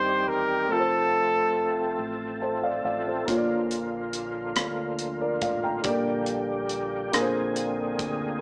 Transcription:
Already playing: G2 D#3 G3 C4 D#4 G4 C5
0.27 E2 A#4
0.68 F1 F3 A3 C4 F4 A4
0.72 A4 A#4
0.79 C5
1.99 A1
2.42 A4 C5 A5
2.63 D5 F5
2.85 A1 D5 F5
3.07 A4 C5
3.26 A#1 A#2 D3 A#3 D4 F4, kick, closed hi-hat
3.30 C#5
3.37 D5
3.71 closed hi-hat
4.13 closed hi-hat
4.56 D2, cross-stick, closed hi-hat
4.99 closed hi-hat
5.21 A#4 D5
5.42 A1 D5 F5, kick, closed hi-hat
5.64 G5 A#5
5.82 A#1 A#2 G3 A3 D4 G4 D5, kick, closed hi-hat
5.89 A#3
6.26 closed hi-hat
6.69 closed hi-hat
7.12 A#1 A#2 D3 A#3 C4 D4 G#4 A#4, cross-stick, closed hi-hat
7.21 C5
7.56 closed hi-hat
7.99 D2, kick, closed hi-hat

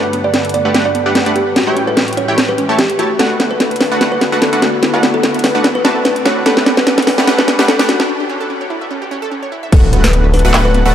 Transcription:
Already playing: G2 D3 A3 D4 G4 B4 F#5, riser
0.04 F#4
0.13 B3, closed hi-hat
0.24 G4 D5
0.34 B3, snare, closed hi-hat
0.45 A4, closed hi-hat
0.49 closed hi-hat
0.54 B3 D5, closed hi-hat
0.65 A3 D4 G4 B4 F#5
0.74 A3 B3 D4 G4 B4 F#5, snare, closed hi-hat
0.85 F#4 D5
0.95 B3, closed hi-hat
1.06 A3 D4 G4 B4 F#5
1.15 B3 B4, snare, closed hi-hat
1.26 A3 D4 G4 A4 B4 F#5, closed hi-hat
1.36 B3 G4, closed hi-hat
1.47 B4
1.56 A2 E3 C#4 F#4 G4, snare, closed hi-hat
1.67 A3 E4 G4 C#5 G5
1.76 C#4, closed hi-hat
1.87 A4 B4
1.97 C#4, snare, closed hi-hat
2.08 C#5, closed hi-hat
2.13 closed hi-hat
2.17 C#4 C#5, closed hi-hat
2.28 A3 E4 G4 C#5 E5 G5
2.38 C#4, snare, closed hi-hat
2.49 G4 B4
2.58 C#4, closed hi-hat
2.69 A3 E4 G4 A4 C#5 A5
2.78 C#4 G4, snare, closed hi-hat
2.89 C#5, closed hi-hat
2.99 A3 C#4 E4 F#4 G4 C#5 A5, closed hi-hat
3.10 E5
3.19 D2 D3 A3 B3 D4 E4 F#4 A4 B4 F#5, snare, closed hi-hat
3.30 F#4
3.40 B3, snare, closed hi-hat
3.51 A4 B4
3.60 B3, snare, closed hi-hat
3.71 B4, closed hi-hat
3.76 closed hi-hat
3.80 D4 B4, snare, open hi-hat
3.92 A3 D4 F#4 B4 D5 F#5
4.01 A3 B3 D4 F#4 B4 F#5, snare, closed hi-hat
4.12 F#4 B4
4.21 B3, snare, closed hi-hat
4.32 A3 D4 F#4 A4 B4 F#5
4.42 B3 A4, snare, closed hi-hat
4.53 A3 D4 F#4 B4 F#5, closed hi-hat
4.62 D4 F#4, snare, closed hi-hat
4.73 D5
4.83 B3 E4, snare, closed hi-hat
4.94 A3 D4 F#4 B4 F#5
5.03 B3, snare, closed hi-hat
5.14 A4
5.23 B3, snare, closed hi-hat
5.34 B4, closed hi-hat
5.39 closed hi-hat
5.44 D4 B4, snare, open hi-hat
5.55 A3 D4 F#4 B4 D5 F#5
5.64 B3, snare, closed hi-hat
5.75 F#4 B4
5.85 A3 B3 D4 F#4 B4 A5, snare, closed hi-hat
5.96 A4
6.05 B3 B4, snare, closed hi-hat
6.16 B4, closed hi-hat
6.25 A3 D4 F#4 B4 C#5 F#5, snare, closed hi-hat
6.36 D5
6.46 G2 A3 B3 D4 G4 A4 B4 F#5, snare, closed hi-hat
6.57 F#4, snare
6.66 B3, snare, closed hi-hat
6.77 G4 B4, snare
6.87 B3, snare, closed hi-hat
6.98 A4, snare, closed hi-hat
7.02 closed hi-hat
7.07 D4 B4, snare, open hi-hat
7.18 A3 D4 G4 B4 F#5, snare
7.27 A3 B3 D4 G4 B4 F#5, snare, closed hi-hat
7.38 F#4 B4, snare
7.48 B3, snare, closed hi-hat
7.59 A3 D4 G4 B4 F#5, snare
7.68 B3 A4, snare, closed hi-hat
7.79 A3 D4 G4 A4 B4 F#5, snare, closed hi-hat
7.89 D4 F#4, snare, closed hi-hat
8.00 B4, snare
8.09 C#4
8.20 G4
8.29 C#4
8.41 A4
8.50 C#4
8.61 C#5
8.70 E4
8.81 E5
8.91 C#4
9.02 G4
9.11 C#4
9.22 A4
9.32 C#4
9.43 C#5
9.52 E4
9.63 E5
9.72 D1 A3 B3 D4 F#4 A4 B4 F#5, kick, closed hi-hat, crash, impact
9.83 F#4
9.93 B3, closed hi-hat
10.04 A4 B4, snare
10.13 B3, closed hi-hat
10.24 B4
10.34 D4 B4, open hi-hat
10.39 closed hi-hat
10.45 D1 A3 D4 F#4 B4 D5 F#5
10.54 D1 A3 B3 D4 F#4 B4 F#5, clap, closed hi-hat
10.65 F#4 B4
10.74 B3, closed hi-hat
10.85 D1 A3 D4 F#4 A4 B4 F#5

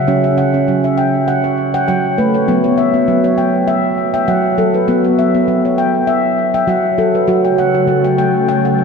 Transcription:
Already playing: F#5
0.08 F#3 C#4
0.24 E5
0.38 F#5
0.54 C#4
0.68 F#3
0.84 E5
0.98 G5
1.28 F#5
1.44 C#5
1.74 F#5 G5
1.88 F#3 G5
2.18 A3 B4
2.34 C#5
2.48 F#3 B3
2.64 C#5
2.78 E5
2.94 B3
3.08 F#3
3.24 C#5
3.38 G5
3.68 E5
4.14 E5 G5
4.28 F#3 F#5
4.58 F#3 A4
4.74 B4
4.88 F#3 B3
5.05 C#5
5.19 E5
5.35 B3
5.48 F#3
5.65 C#5
5.78 G5
6.07 E5
6.54 E5 G5
6.68 F#3 F#5
6.98 F#3 A4
7.15 B4
7.28 C#3 F#3 A3 F#4
7.45 G5
7.58 F#5
7.75 F#4
7.88 F#3
8.04 G5
8.18 G5
8.48 G5
8.65 F#5

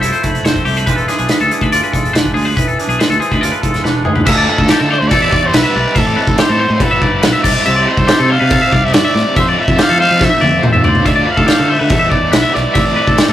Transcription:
Already playing: C2 F3 A3 C4
0.01 E4 E5, closed hi-hat
0.12 C5, closed hi-hat
0.22 F1 A3 B4, kick, closed hi-hat
0.35 closed hi-hat
0.43 F1 C4 C5, snare, closed hi-hat
0.56 kick, closed hi-hat
0.65 C2 A3 G4, open hi-hat
0.77 B4, closed hi-hat
0.86 E1 E3 G#3 D4 F4 B4, kick, closed hi-hat
0.96 A4, closed hi-hat
1.08 D4 G#4, snare, closed hi-hat
1.19 B1 G#4, closed hi-hat
1.29 G#3 B4, snare, closed hi-hat
1.40 D2 A4, closed hi-hat
1.51 D4 G#4, closed hi-hat
1.61 D2 B4, kick, closed hi-hat
1.72 F4 D5, closed hi-hat
1.83 B4, closed hi-hat
1.92 E1 G#3 A4, kick, closed hi-hat
2.05 closed hi-hat
2.13 E1 D4 B4, snare, closed hi-hat
2.25 kick, closed hi-hat
2.34 D2 G#3 G#4, open hi-hat
2.45 B4
2.57 E1 E3 B4, kick, closed hi-hat
2.68 A4, closed hi-hat
2.78 D4 G#4, closed hi-hat
2.88 B1 G#4, closed hi-hat
2.99 G#3 B4, snare, closed hi-hat
3.09 D2 A4, closed hi-hat
3.20 C4 G#4, closed hi-hat
3.32 D2 D4 B4, kick, closed hi-hat
3.41 F4 D5, closed hi-hat
3.52 B4, closed hi-hat
3.61 E1 G#3 A4, kick, closed hi-hat
3.74 snare, closed hi-hat
3.84 E1 D4 B4, snare
4.05 D2 G#3 G#4, mid tom
4.15 B4, floor tom
4.26 D2 D3 A3 D4 F4 A4 E5, kick, crash
4.38 D5
4.47 A3 D4 F4 B4
4.58 D2 A4, kick
4.68 D3 A3 D4 F4 G4, snare, crash
4.79 D3 A4
4.90 D3 A3 D4 F4 C5 D5
4.99 D2 B4 C5
5.08 E3 G3 A4 D5, kick, crash
5.12 B3 E4
5.22 E5
5.32 E2 B3 E4 D5, kick
5.36 G3
5.46 C5
5.53 B1 E3 G3 B3 E4 B4, snare, crash
5.63 E5
5.75 B1 G3 B3 E4 D5
5.94 A1 A2 E3 A3 C4 E4 A4 E5, kick, crash
6.06 D5
6.16 A3 C4 E4 B4
6.27 A1 A4, kick
6.37 E3 A3 C4 E4 G4 C5, snare, crash
6.49 A2 A4
6.58 A2 E3 A3 C4 E4 C5
6.70 A2 B4
6.80 G1 G2 D3 F3 B3 F4 A4 B4, kick, crash
6.91 E5
7.02 G1 F3 B3 F4 D5, kick
7.22 B1 G2 D3 F3 B3 F4 B4, snare, crash
7.33 E5
7.43 C2 G3 C4 E4 D5, kick, snare, crash
7.48 C3
7.65 C2 C3 G3 C4 E4 C5 E5, crash
7.76 D5
7.87 G3 C4 E4 B4
7.97 C2 A4, kick
8.07 C3 G3 C4 E4 G4, snare, crash
8.19 C3 A4
8.30 C3 G3 C4 E4 C5 F5
8.40 C3 B4
8.50 C3 G3 C4 E4 A4, kick, crash
8.62 E5
8.72 C2 G3 C4 E4 D5, kick
8.85 E5
8.93 G2 C3 G3 C4 E4 B4 D5, snare, crash
9.05 E5
9.14 A2 G3 C4 E4 D5, snare
9.36 F2 F3 A3 C4 F4 C5 E5, kick, crash
9.48 D5
9.58 A3 C4 F4 B4 E5
9.68 F2 A4, kick
9.77 F3 A3 C4 F4 G4, snare, crash
9.82 F5
9.89 F3 A4
9.99 F3 A3 C4 F4 C5 F5
10.11 F3 B4
10.19 F3 A3 C4 F4 A4, kick, snare
10.25 E5
10.30 E5
10.41 F2 A3 C4 F4 D5, high tom
10.62 E2 F3 A3 C4 F4 C5, mid tom
10.73 E5, mid tom
10.84 D2 A3 C4 F4 C5 D5, floor tom
10.95 floor tom
11.05 D2 D3 A3 D4 F4 D5 E5, kick, crash
11.16 D5
11.25 A3 D4 F4 B4
11.30 F5
11.37 D2 A4, kick
11.47 D3 A3 D4 G4 F5, snare, crash
11.52 F4
11.58 D3 A4
11.68 A3 D4 F4 C5 E5
11.73 D3
11.79 D3 B4
11.88 E2 E3 G3 B3 E4 A4, kick, crash
11.99 E5
12.10 E2 B3 E4 D5, kick
12.14 G3
12.31 B1 E3 G3 B3 E4 B4 E5, snare, crash
12.42 E5
12.53 B1 G3 B3 E4 D5, snare
12.74 A1 A2 E3 A3 C4 E4 E5, kick, crash
12.85 D5
12.95 A3 C4 E4 B4
13.07 A1 A4, kick
13.17 E3 A3 C4 E4 G4, snare, crash
13.28 A2 A4

